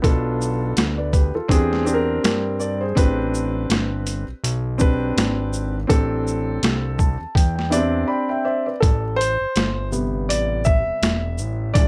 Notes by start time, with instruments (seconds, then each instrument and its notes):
0.02 analog synth bass B1, grand piano B3 D4 F4 A4, kick, closed hi-hat
0.41 shaker
0.77 analog synth bass D2, snare, closed hi-hat
0.98 grand piano B4 D5
1.13 grand piano G4 B4, kick, closed hi-hat, shaker
1.35 analog synth bass E2, grand piano F4 A4
1.48 analog synth bass E2, grand piano C4 D4 G4 G#4, kick, closed hi-hat
1.73 snare
1.85 grand piano C4 D4 G4 G#4, shaker
1.94 grand piano A#4
2.23 analog synth bass G2, grand piano G4 A#4, snare, closed hi-hat
2.60 grand piano A#4 D5, shaker
2.81 grand piano G#4 C5
2.95 analog synth bass A1, grand piano C4 D4 G4 B4, kick, closed hi-hat
3.34 shaker
3.70 analog synth bass G1, snare, closed hi-hat
4.07 closed hi-hat, shaker
4.28 analog synth bass B1
4.44 analog synth bass B1, closed hi-hat
4.78 grand piano C4 D4 G4 B4, kick, shaker
5.17 analog synth bass G#1, snare, closed hi-hat
5.53 shaker
5.87 analog synth bass A1, grand piano C4 D4 G4 A4, kick, closed hi-hat
6.27 shaker
6.63 analog synth bass C2, snare, closed hi-hat
6.99 grand piano A5, kick, shaker
7.21 analog synth bass E2
7.35 analog synth bass E2, grand piano G5, kick, closed hi-hat
7.56 grand piano G5, snare
7.70 grand piano B3 D4 G4 D5 E5, closed hi-hat, shaker
7.76 grand piano C4
8.08 grand piano D5 G5 B5
8.29 grand piano E5 G5
8.45 grand piano C5 D5 E5
8.66 grand piano B4 D5
8.80 analog synth bass A1, grand piano A4, kick, closed hi-hat
9.16 grand piano C5
9.21 closed hi-hat, shaker
9.41 analog synth bass G1
9.56 analog synth bass G1, snare, closed hi-hat
9.91 grand piano C3 G3 B3, shaker
10.29 analog synth bass A1, grand piano D5, closed hi-hat
10.65 grand piano E5, kick, shaker
10.86 analog synth bass E1
11.02 analog synth bass E1, snare, closed hi-hat
11.38 analog synth bass A1, shaker
11.74 analog synth bass A#1, grand piano E3 G#3 D4 D5, kick, closed hi-hat